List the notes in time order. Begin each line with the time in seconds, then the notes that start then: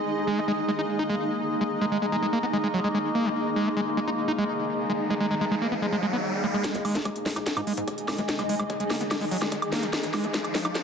Already playing: G#3 D#4 G#4 D#5
0.07 A#3
0.27 G#3
0.38 A#3
0.48 G#3
0.68 G#3
0.79 D#4
0.99 D#4
1.10 G#3
1.61 G#3
1.81 G#3
1.92 G#3
2.02 G#3
2.12 G#3
2.23 G#3
2.33 A#3
2.43 B3
2.53 G#3
2.64 G#3
2.74 F#3
2.84 G#3
2.94 G#3
3.15 A#3
3.25 F#3
3.36 riser
3.56 G#3
3.66 A#3
3.77 G#3
3.97 G#3
4.07 D#4
4.28 D#4
4.38 G#3
4.90 G#3
5.10 G#3
5.21 G#3
5.31 G#3
5.41 G#3
5.51 G#3
5.62 A#3
5.72 B3
5.82 G#3
5.92 G#3
6.03 G#3
6.13 B3
6.44 G#3
6.54 G#3
6.64 G#3 D#4 G#4, kick, snare, closed hi-hat, riser
6.75 G#1, closed hi-hat
6.85 G#3 D#5, open hi-hat, high woodblock
6.95 G#1 A#3 G#4, snare, closed hi-hat
7.05 G#3, kick, closed hi-hat, high woodblock
7.16 closed hi-hat
7.26 B1 G#3, snare, open hi-hat
7.36 B1 D#4, closed hi-hat, high woodblock
7.46 kick, snare, closed hi-hat
7.57 G#2 D#4, closed hi-hat, high woodblock
7.67 G#3, open hi-hat
7.77 G#2, closed hi-hat
7.88 kick, closed hi-hat, high woodblock
7.98 closed hi-hat
8.08 G#1, snare, open hi-hat, high woodblock
8.18 G#1 G#3, closed hi-hat
8.29 kick, snare, closed hi-hat
8.39 A#1 G#3, closed hi-hat, high woodblock
8.49 G#3, open hi-hat
8.60 A#1 G#3, closed hi-hat, high woodblock
8.70 G#3, kick, closed hi-hat
8.80 G#3, closed hi-hat
8.90 G#1 A#3, snare, open hi-hat, high woodblock
9.01 G#1 B3, closed hi-hat
9.11 G#3, kick, snare, closed hi-hat, high woodblock
9.21 F#1 G#3, open hi-hat
9.31 F#3, open hi-hat
9.42 F#1 G#3, snare, closed hi-hat, high woodblock
9.52 G#3, kick, closed hi-hat
9.62 closed hi-hat, high woodblock
9.72 C#2 A#3, snare, open hi-hat
9.83 C#2 F#3, closed hi-hat
9.93 kick, snare, closed hi-hat, high woodblock
10.03 G#1, closed hi-hat
10.14 G#3, snare, open hi-hat, high woodblock
10.24 G#1 A#3, closed hi-hat
10.31 G#3 C#5, kick, snare, closed hi-hat
10.44 closed hi-hat, high woodblock
10.55 B1 G#3, snare, open hi-hat
10.65 B1 D#4, closed hi-hat, high woodblock
10.75 kick, snare, closed hi-hat